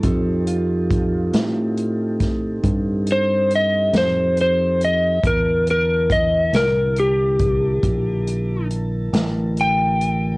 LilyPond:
<<
  \new Staff \with { instrumentName = "Electric slide guitar" } { \time 12/8 \key c \mixolydian \tempo 4. = 46 r2. r8 c''8 ees''8 c''8 c''8 ees''8 | bes'8 bes'8 ees''8 bes'8 g'2 r4 g''4 | }
  \new Staff \with { instrumentName = "Tonewheel organ" } { \time 12/8 \key c \mixolydian <c' ees' g' a'>1. | <d e' bes' a''>1. | }
  \new Staff \with { instrumentName = "Clean electric guitar" } { \time 12/8 \key c \mixolydian <f' a'>8 f'2 r2. r8 | r1. | }
  \new Staff \with { instrumentName = "Fingered electric bass" } { \clef bass \time 12/8 \key c \mixolydian f,4. a,4. g,4. f,4. | e,4. c,4. bes,,4. a,,4. | }
  \new DrumStaff \with { instrumentName = "Drums" } \drummode { \time 12/8 <hh bd>8 hh8 <hh bd>8 <hh sn>8 hh8 <hh bd sn>8 <hh bd>8 hh8 hh8 <hh sn>8 hh8 hh8 | <hh bd>8 hh8 <hh bd>8 <hh sn>8 hh8 <hh bd>8 <hh bd>8 hh8 hh8 <hh sn>8 hh8 hh8 | }
>>